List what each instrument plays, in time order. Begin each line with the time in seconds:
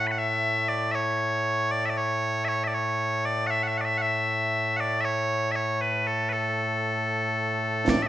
Already playing: bagpipes A2 A3
0.07 bagpipes B5
0.11 bagpipes F#5
0.18 bagpipes E5
0.68 bagpipes D5
0.91 bagpipes C#5 E5
1.71 bagpipes D5
1.85 bagpipes E5
1.90 bagpipes D5
1.97 bagpipes C#5
2.45 bagpipes C#5 E5
2.64 bagpipes D5 E5
2.74 bagpipes C#5
3.25 bagpipes D5
3.47 bagpipes E5 F#5
3.63 bagpipes F#5
3.68 bagpipes E5
3.78 bagpipes D5 F#5
3.85 bagpipes E5
3.98 bagpipes E5 F#5
4.77 bagpipes D5 F#5
5.01 bagpipes E5
5.05 bagpipes C#5
5.51 bagpipes E5
5.55 bagpipes C#5
5.81 bagpipes B4
6.07 bagpipes A4
6.29 bagpipes A4 B4
7.88 bagpipes D5, concert bass drum, snare
8.02 bagpipes E5